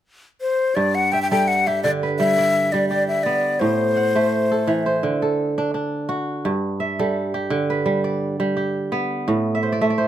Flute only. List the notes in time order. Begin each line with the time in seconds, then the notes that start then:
0.41 C5
0.75 D5
0.95 F#5
1.12 G5
1.22 G5
1.31 G5
1.48 F#5
1.67 E5
1.83 D5
2.19 E5
2.72 D5
2.88 D5
3.08 E5
3.23 D5
3.60 C5